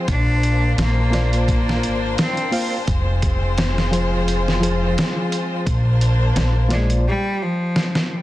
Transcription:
Already playing: violin section F4 C5
0.08 upright bass A#1, violin section A#3 D4, cello D4, kick, closed hi-hat
0.43 closed hi-hat
0.78 upright bass A#1, cello A#3, snare, closed hi-hat
1.11 reed electric piano A#3 F4 C5 D5, snare, closed hi-hat
1.33 closed hi-hat
1.48 cello A#3, kick, closed hi-hat
1.69 snare
1.83 upright bass G#1, closed hi-hat
2.18 cello C4, snare, closed hi-hat
2.37 closed hi-hat
2.51 reed electric piano A#3 F4 C5 F5, open hi-hat
2.88 upright bass F1, violin section G#3 C4 F4, kick, closed hi-hat
3.22 kick, closed hi-hat
3.58 snare, closed hi-hat
3.78 snare
3.91 reed electric piano F3 F4 G#4 C5, closed hi-hat
4.28 closed hi-hat
4.48 snare
4.60 reed electric piano F3 F4 G#4 C5, closed hi-hat
4.98 snare, closed hi-hat
5.32 closed hi-hat
5.66 upright bass A#1, violin section A#3 D4 C5, kick, closed hi-hat
6.01 closed hi-hat
6.36 upright bass A#1, snare, closed hi-hat
6.69 reed electric piano A#3 F4 C5 D5, snare, closed hi-hat
6.73 cello G#3
6.90 closed hi-hat
7.08 cello G3
7.42 cello F3
7.76 snare
7.95 snare

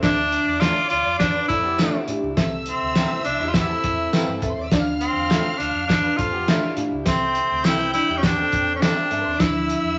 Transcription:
Already playing: clean electric guitar C4 A4
0.02 fingered electric bass D2, reed electric piano D3 D4 F4 E5, tenor saxophone D4, string section D5 D6, kick, snare, closed hi-hat, tambourine
0.32 closed hi-hat
0.47 fingered electric bass E2
0.60 clean electric guitar F3 A3 E4 A4, tenor saxophone F4, snare, closed hi-hat, tambourine
0.90 fingered electric bass D2, tenor saxophone F4, closed hi-hat
1.06 fingered electric bass F2
1.19 tenor saxophone D4, kick, snare, closed hi-hat, tambourine
1.35 clean electric guitar D4 B4
1.48 fingered electric bass F2, clean electric guitar C4 A4, tenor saxophone E4, kick, closed hi-hat
1.64 clean electric guitar B3 G4
1.78 clean electric guitar F3 A3 E4 F4 A4, reed electric piano D4 F4 E5, snare, closed hi-hat, tambourine
1.93 clean electric guitar G3 E4
2.08 fingered electric bass A2, reed electric piano D4 F4 G4, closed hi-hat
2.22 fingered electric bass C#2
2.37 fingered electric bass C2, reed electric piano C3 C4 A4 E5, string section E5 E6, kick, snare, closed hi-hat, tambourine
2.66 tenor saxophone C4, closed hi-hat
2.81 fingered electric bass D2
2.95 clean electric guitar G3 C4 E4 A4, snare, closed hi-hat, tambourine
3.12 clean electric guitar E3 C4
3.24 fingered electric bass C2, tenor saxophone D4, clean electric guitar D4, closed hi-hat
3.40 fingered electric bass E2, clean electric guitar G3 E4
3.48 tenor saxophone F4
3.54 clean electric guitar B3 G4, tenor saxophone E4, kick, snare, closed hi-hat, tambourine
3.69 clean electric guitar C4 A4
3.84 fingered electric bass E2, kick, closed hi-hat
4.13 clean electric guitar G3 C4 E4 A4, reed electric piano C4 A4 B4, snare, closed hi-hat, tambourine
4.20 string section F4 F5
4.27 fingered electric bass G2, string section G4 G5
4.36 string section A4 A5
4.42 fingered electric bass E2, reed electric piano C4 A4 E5, string section B4 B5, kick, closed hi-hat
4.51 string section C5 C6
4.57 fingered electric bass D#2, string section D5 D6
4.65 string section E5 E6
4.71 fingered electric bass D2, reed electric piano D3 D4 F4 D5, string section F5 F6, kick, snare, closed hi-hat, tambourine
4.80 reed electric piano F5
5.01 tenor saxophone C4, closed hi-hat
5.15 fingered electric bass E2
5.30 clean electric guitar F3 A3 E4 A4, snare, closed hi-hat, tambourine
5.58 fingered electric bass D2, tenor saxophone D4, closed hi-hat
5.74 fingered electric bass F2
5.87 tenor saxophone D4, kick, snare, closed hi-hat, tambourine
6.04 clean electric guitar D4 B4
6.17 fingered electric bass F2, clean electric guitar C4 A4, tenor saxophone F4, kick, closed hi-hat
6.33 clean electric guitar B3 G4
6.47 clean electric guitar F3 A3 E4 F4 A4, reed electric piano D4 F4 E5, snare, closed hi-hat, tambourine
6.63 clean electric guitar G3 E4
6.77 fingered electric bass A2, reed electric piano D4 F4 F5, closed hi-hat
6.91 fingered electric bass C#2
7.05 fingered electric bass C2, reed electric piano C3 C4 A4 E5, tenor saxophone C4, string section G5 G6, kick, snare, closed hi-hat, tambourine
7.35 closed hi-hat
7.50 fingered electric bass D2
7.64 fingered electric bass C2, clean electric guitar G3 C4 E4 A4, tenor saxophone E4, snare, closed hi-hat, tambourine
7.80 clean electric guitar E3 C4
7.94 clean electric guitar D4, tenor saxophone E4, snare, closed hi-hat
8.08 fingered electric bass E2, clean electric guitar G3 E4
8.17 tenor saxophone C#4
8.23 clean electric guitar B3 G4, tenor saxophone D4, kick, snare, closed hi-hat, tambourine
8.38 clean electric guitar C4 A4
8.52 fingered electric bass E2, kick, closed hi-hat
8.75 tenor saxophone C#4
8.81 clean electric guitar G3 C4 E4 A4, reed electric piano C4 A4 E5, tenor saxophone D4, snare, closed hi-hat, tambourine
8.89 string section E4 E5
8.97 string section F4 F5
9.04 string section G4 G5
9.11 fingered electric bass G2, reed electric piano C4 A4 E5, string section A4 A5, closed hi-hat
9.20 string section B4 B5
9.25 fingered electric bass D#2, string section C5 C6
9.33 string section D5 D6
9.39 fingered electric bass D2, reed electric piano D3 F3 D4 E5, tenor saxophone E4, string section E5 E6, kick, snare, closed hi-hat, tambourine
9.69 closed hi-hat
9.84 fingered electric bass E2

